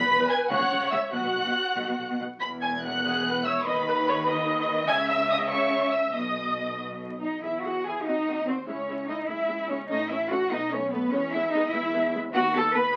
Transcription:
Already playing: viola section B4, violin section B5 B6
0.09 double bass section E1, cello section E2
0.19 cello section E2
0.29 violin section G#5 G#6
0.50 double bass section C#2, cello section C#3, viola section C#5, violin section F#5 F#6
0.60 cello section C#3
0.71 double bass section C#2, cello section C#3
0.81 cello section C#3
0.92 double bass section C#2, cello section C#3, violin section E5 E6
1.13 double bass section B1, cello section B2, viola section F#4, violin section F#5 F#6
1.24 cello section B2
1.35 double bass section B1, cello section B2
1.45 cello section B2
1.77 double bass section B1, cello section B2
1.88 cello section B2
1.98 double bass section B1, cello section B2
2.10 cello section B2
2.20 double bass section B1, cello section B2
2.40 double bass section E1, cello section E2, violin section B5 B6
2.62 violin section G#5 G#6
2.83 violin section F#5 F#6
3.05 viola section G#4
3.26 viola section B4
3.45 viola section C#5, violin section E5 E6
3.65 double bass section D#2, cello section D#3, violin section B4 B5, viola section D#5
3.87 viola section B4
4.08 viola section C#5
4.28 viola section D#5
4.88 double bass section C#2, cello section C#3, viola section E5, violin section G#5 G#6
5.09 violin section E5 E6
5.29 violin section D#5 D#6
5.50 violin section C#5 C#6, viola section E5
5.93 violin section E5 E6
6.14 double bass section B1, cello section B2, viola section D#5, violin section D#5 D#6
7.22 cello section D#4, violin section D#5
7.43 double bass section E2, cello section E4, viola section E4 G#4, violin section E5
7.63 viola section E4 G#4, cello section F#4, violin section F#5
7.85 viola section E4 G#4, cello section G#4, violin section G#5
8.05 double bass section D#2, viola section C4 F#4, cello section D#4, violin section D#5
8.27 viola section C4 F#4
8.46 cello section C4, viola section C4 F#4, violin section C5
8.67 double bass section C#2, viola section G#3 E4, cello section C#4, violin section C#5
8.88 viola section G#3 E4
9.08 viola section G#3 E4, cello section D#4, violin section D#5
9.28 double bass section C#2, viola section G#3 E4, cello section E4, violin section E5
9.49 viola section G#3 E4
9.69 viola section G#3 E4, cello section C#4, violin section C#5
9.90 double bass section A1, viola section A3 C#4, cello section D#4, violin section D#5
10.09 viola section A3 C#4, cello section E4, violin section E5
10.30 viola section A3 C#4, cello section F#4, violin section F#5
10.50 double bass section B1, viola section A3 B3, cello section D#4, violin section D#5
10.71 viola section A3 B3, cello section C#4, violin section C#5
10.92 viola section A3 B3, cello section B3, violin section B4
11.12 double bass section E2, viola section G#3 B3, cello section C#4, violin section C#5
11.33 viola section G#3 B3, cello section E4, violin section E5
11.53 viola section G#3 B3, cello section D#4, violin section D#5
11.73 double bass section E2, viola section G#3 B3, cello section E4, violin section E5
11.94 viola section G#3 B3
12.15 viola section G#3 B3
12.33 double bass section D#2, viola section B3, cello section F#4, violin section F#5
12.54 viola section B3, cello section A4, violin section A5
12.75 viola section B3, cello section B4, violin section B5

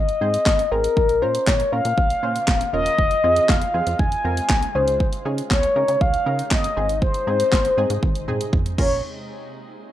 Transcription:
Already playing: analog synth bass G#1, synth stab G#4 A#4, soft synth lead D#5
0.09 closed hi-hat
0.21 analog synth bass G#2, synth stab C4 G#4 C5
0.34 closed hi-hat
0.46 analog synth bass G#1, kick, snare, clap
0.59 closed hi-hat
0.71 analog synth bass A1, synth stab C4 G#4 A#4, soft synth lead A#4
0.84 closed hi-hat
0.97 analog synth bass A#1, ambient pad C#3 A#3 F4, kick
1.09 closed hi-hat
1.22 analog synth bass A#2, synth stab C#4 F4 A#4, soft synth lead C5
1.35 closed hi-hat
1.47 analog synth bass A#1, soft synth lead C#5, kick, snare, clap
1.60 closed hi-hat
1.72 analog synth bass A#2, synth stab C#4 F4 A#4, soft synth lead F5
1.85 analog synth bass A#2, closed hi-hat
1.98 analog synth bass A#1, kick
2.10 closed hi-hat
2.23 analog synth bass A#2, synth stab C#4 F4 C5
2.36 closed hi-hat
2.48 analog synth bass D#1, kick, snare, clap
2.61 closed hi-hat
2.73 analog synth bass E1, synth stab C#4 F4 A#4, soft synth lead D#5
2.86 closed hi-hat
2.99 analog synth bass F1, ambient pad C3 G#3, kick
3.11 closed hi-hat
3.23 analog synth bass F2, synth stab C4 F4 G#4
3.36 closed hi-hat
3.49 analog synth bass F1, soft synth lead F5, kick, snare, clap
3.62 closed hi-hat
3.74 analog synth bass F2, synth stab C4 F4 G#4
3.87 analog synth bass F2, closed hi-hat
3.99 analog synth bass F1, soft synth lead G#5, kick
4.12 closed hi-hat
4.24 analog synth bass F2, synth stab C4 F4 A#4
4.37 closed hi-hat
4.49 analog synth bass C2, kick, snare, clap
4.63 closed hi-hat
4.75 analog synth bass C#2, ambient pad C#3 D#4, synth stab C#4 D#4 G#4, soft synth lead C5
4.88 closed hi-hat
5.00 kick
5.13 closed hi-hat
5.25 analog synth bass C#3, synth stab C#4 D#4 G#4
5.38 closed hi-hat
5.51 analog synth bass C#2, soft synth lead C#5, kick, snare, clap
5.63 closed hi-hat
5.76 analog synth bass C#3, synth stab C#4 D#4 A#4
5.88 analog synth bass C#3, closed hi-hat
6.01 analog synth bass C#2, soft synth lead F5, kick
6.14 closed hi-hat
6.26 analog synth bass C#3, synth stab C#4 D#4 A#4
6.39 closed hi-hat
6.51 analog synth bass G1, soft synth lead D#5, kick, snare, clap
6.64 closed hi-hat
6.76 analog synth bass G#1, ambient pad C3, synth stab C4 D#4 G#4
6.89 closed hi-hat
7.02 soft synth lead C5, kick
7.14 closed hi-hat
7.27 analog synth bass G#2, synth stab C4 D#4 G#4
7.40 closed hi-hat
7.52 analog synth bass G#1, kick, snare, clap
7.65 closed hi-hat
7.77 analog synth bass G#2, synth stab C4 D#4 G#4
7.90 analog synth bass G#2, closed hi-hat
8.03 analog synth bass G#1, kick, high tom
8.15 closed hi-hat
8.28 analog synth bass G#2, synth stab C4 D#4 G#4, mid tom
8.41 closed hi-hat
8.53 analog synth bass G#1, kick, mid tom
8.66 closed hi-hat, mid tom
8.78 analog synth bass A#1, synth stab C#4 F4 A#4, soft synth lead C#5, kick, crash

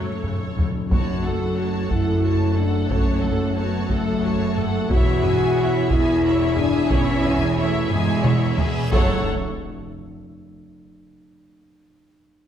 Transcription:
Already playing: trombone section C#3 A3, viola section F#3 A4, french horn section C#4 F#4, violin section C#5
0.01 timpani F#2
0.09 timpani F#2
0.17 timpani F#2
0.23 double bass section F#2, timpani F#2, viola section C#3, taiko low-mid
0.32 timpani F#2
0.38 timpani F#2
0.47 timpani F#2
0.54 timpani F#2, double bass section F#2, viola section C#3
0.58 timpani F#2, taiko low
0.69 timpani F#2
0.78 timpani F#2
0.88 double bass section F#1, timpani F#2, cello section F#2, trombone section F#3 A3, french horn section F#4, viola section F#4, violin section C#5 A5, taiko
1.24 viola section A4, violin section A4 F#5
1.57 viola section F#4, violin section C#5 A5
1.89 double bass section F#1, cello section F#2, french horn section E4, violin section A4 F#5, viola section A4, taiko
2.22 viola section F#4, violin section C#5 A5
2.54 french horn section D4, violin section A4 F#5, viola section A4
2.89 double bass section F#1, cello section F#2, french horn section C#4, viola section F#4, violin section C#5 A5, taiko
3.21 violin section A4 F#5, viola section A4, taiko low-mid
3.56 french horn section B3, viola section F#4, violin section C#5 A5
3.88 double bass section F#1, cello section F#2, french horn section A3, viola section A4, violin section A4 F#5, taiko
4.21 viola section F#4, violin section C#5 A5
4.56 violin section A4 F#5, viola section A4, taiko low-mid
4.89 double bass section E1, cello section E2, trombone section E3 E4, viola section E4, french horn section F#4, violin section C#5, taiko
4.93 violin section E5
5.22 viola section G#4, violin section E5 G#5, taiko low-mid
5.57 viola section E4, violin section C#5 E5
5.90 double bass section E1, cello section E2, french horn section E4, viola section G#4, violin section E5 G#5, taiko
6.22 viola section E4, violin section C#5 E5
6.55 french horn section D4, viola section G#4, violin section E5 G#5, taiko low-mid
6.88 double bass section E1, cello section E2, french horn section C#4, viola section E4, violin section C#5 E5, taiko, reverse cymbal
7.22 viola section G#4, violin section E5 G#5, taiko low-mid
7.55 french horn section A3, viola section E4, violin section C#5 E5
7.88 double bass section E1, cello section E2, french horn section G#3, viola section G#4, violin section E5 G#5, taiko low-mid
8.22 viola section E4, violin section C#5 E5, taiko mid
8.57 viola section G#4, violin section E5 G#5, taiko low
8.90 double bass section F#1, timpani F#2, cello section F#2, trombone section C#3 A3, french horn section F#3, viola section A4, violin section C#5 F#5, taiko, impact

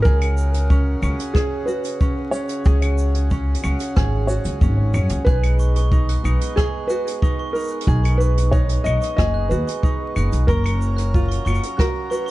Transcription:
Already playing: ukulele D#4 F#4, harmonium F#4
0.02 upright bass C#2, harmonium C#3 C#4 G#4, ukulele G#4, felt piano A#4, kick, shaker
0.21 closed hi-hat, claves
0.37 shaker
0.54 closed hi-hat, shaker
0.70 ukulele C#4, kick, shaker
1.02 upright bass C#2, ukulele C#4, claves, shaker
1.20 closed hi-hat, shaker
1.34 felt piano G#4, ukulele G#4, kick, cross-stick, shaker
1.66 ukulele F#4, felt piano B4, shaker
1.84 closed hi-hat, shaker
2.01 ukulele C#4, kick, shaker
2.31 ukulele C#4, felt piano C#5, shaker
2.49 closed hi-hat, shaker
2.65 upright bass C#2, ukulele G#4, kick, shaker
2.82 closed hi-hat, claves
2.98 shaker
3.15 closed hi-hat
3.31 ukulele C#4, kick, shaker
3.54 closed hi-hat
3.63 upright bass C#2, ukulele C#4, claves, shaker
3.80 closed hi-hat, shaker
3.96 upright bass G#1, ukulele G#4, kick, cross-stick, shaker
4.27 ukulele F#4, felt piano C#5, shaker
4.45 upright bass C#2, closed hi-hat, shaker
4.61 upright bass G#1, ukulele C#4, kick, shaker
4.94 upright bass F#2, ukulele C#4, claves, shaker
5.09 upright bass C#2, closed hi-hat, shaker
5.25 upright bass B1, harmonium B3, ukulele G#4, felt piano B4, glockenspiel F#6, kick, shaker
5.29 harmonium G#3 D#4
5.43 closed hi-hat, claves
5.59 glockenspiel C#6, shaker
5.76 glockenspiel C#6, closed hi-hat, shaker
5.92 ukulele D#4, kick, shaker
6.08 glockenspiel F#6, closed hi-hat
6.24 upright bass B1, ukulele D#4, claves, shaker
6.41 glockenspiel C#6, closed hi-hat, shaker
6.56 felt piano G#4, ukulele G#4, glockenspiel C#6, kick, cross-stick, shaker
6.87 ukulele F#4, felt piano B4, glockenspiel F#6, shaker
7.08 closed hi-hat, shaker
7.22 ukulele D#4, glockenspiel C#6, kick, shaker
7.39 glockenspiel C#6
7.53 ukulele D#4, felt piano A#4, shaker
7.59 shaker
7.64 shaker
7.68 shaker
7.72 glockenspiel F#6
7.81 closed hi-hat
7.87 upright bass B1, ukulele G#4, kick, shaker
8.04 glockenspiel C#6, closed hi-hat, claves
8.18 felt piano B4, glockenspiel C#6, shaker
8.38 closed hi-hat, shaker
8.52 ukulele D#4, felt piano C#5, glockenspiel F#6, kick, shaker
8.69 closed hi-hat
8.84 upright bass B1, ukulele D#4, felt piano D#5, glockenspiel C#6, claves, shaker
9.02 glockenspiel C#6, closed hi-hat, shaker
9.17 upright bass F#1, ukulele G#4, felt piano D#5, kick, cross-stick, shaker
9.34 glockenspiel F#6
9.49 upright bass D#2, ukulele F#4, felt piano B4, shaker
9.67 glockenspiel C#6, closed hi-hat, shaker
9.83 ukulele D#4, glockenspiel C#6, kick, shaker
10.16 upright bass F#1, ukulele D#4, glockenspiel F#6, claves, shaker
10.32 upright bass B1, closed hi-hat, shaker
10.47 upright bass F#1, harmonium F#3 C#4 A#5, felt piano A#4, ukulele A#4, glockenspiel C#6, kick, shaker
10.64 glockenspiel C#6, closed hi-hat, claves
10.82 shaker
10.96 glockenspiel F#6, closed hi-hat, shaker
11.14 ukulele F4, kick, shaker
11.28 glockenspiel C#6, closed hi-hat
11.45 upright bass F#1, ukulele F4, glockenspiel C#6, claves, shaker
11.50 claves
11.53 claves, shaker
11.56 claves
11.58 claves
11.63 closed hi-hat
11.77 felt piano F#4, ukulele A#4, glockenspiel F#6, kick, cross-stick, shaker
12.10 ukulele F#4, felt piano B4, glockenspiel C#6, shaker
12.26 glockenspiel C#6

